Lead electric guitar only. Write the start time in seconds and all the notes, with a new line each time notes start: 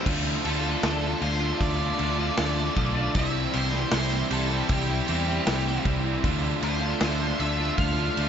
0.46 A4
1.22 C5
1.61 D5
3.15 E5
3.54 C5
3.93 C5
4.33 A4
4.72 G4
6.64 C5
7.40 E5
7.77 F5